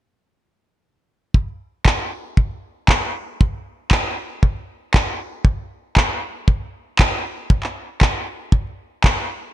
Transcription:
1.34 kick
1.85 kick, clap
2.37 kick
2.88 kick, clap
3.41 kick
3.91 kick, clap
4.43 kick
4.94 kick, clap
5.45 kick
5.97 kick, clap
6.48 kick
6.99 kick, clap
7.50 kick
7.63 clap
8.01 kick, clap
8.52 kick
9.04 kick, clap

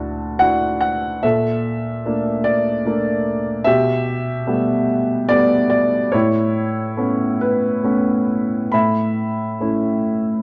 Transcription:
Already playing: D2 D4 E4 F#4 F#5 A5
0.39 D4 E4 F#4 F#5
0.81 F#5
1.23 A#2 A4 E5
2.05 A3 A#3 D4
2.44 D5
2.85 A3 A#3 D4
3.64 B2 G4 E5
4.47 G3 A3 B3
5.29 G3 A3 B3 D5
5.70 D5
6.12 A2 E4 C#5
6.97 A3 B3 C#4
7.41 B4
7.84 A3 B3 C#4
8.72 A2 E5 B5
9.60 A3 C#4 E4

